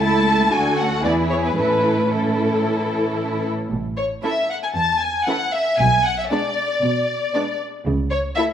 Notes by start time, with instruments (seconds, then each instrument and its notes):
Already playing: cello section C#2
0.00 viola section A3 E4, violin section E4 A4 A5
0.51 cello section D2, viola section A3 D4, violin section F#4 A4 G#5
0.77 viola section C#4, violin section F#5
1.04 cello section E2, viola section E3 B3, violin section E4 G#4 D5
1.31 violin section C#5
1.44 violin section B4
1.57 cello section A2, viola section E3 C#4, violin section E4 A4 B4
2.11 viola section E3 C#4, violin section E4 A4
3.71 double bass section A1, cello section A2
3.97 violin section C#5
4.23 viola section E3 C#4, violin section E4 A4 E5
4.50 violin section F#5
4.63 violin section G#5
4.75 cello section E2, violin section A5
5.01 violin section G#5
5.26 viola section E3 C#4, violin section E4 A4 F#5
5.53 violin section E5
5.78 double bass section B1, cello section B2, violin section G#5
6.05 violin section F#5
6.18 violin section E5
6.30 viola section G#3 B3, violin section D4 D5
6.83 cello section B2
7.34 viola section G#3 B3, violin section D4 D5
7.86 double bass section C#2, cello section C#3
8.11 violin section C#5
8.36 viola section A3 E4, violin section E4 A4 E5